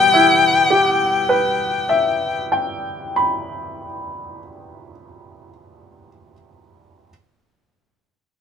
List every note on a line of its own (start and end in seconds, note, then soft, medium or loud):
0.00 2.38 E2 medium
0.00 2.83 B2 medium
0.00 3.32 E3 soft
0.00 3.84 G3 soft
0.00 4.38 B3 soft
0.00 2.39 G5 medium
0.13 4.91 E4 soft
0.70 5.48 G4 soft
1.29 6.07 B4 soft
1.89 6.32 E5 soft
2.52 6.32 G5 soft
3.16 6.32 B5 soft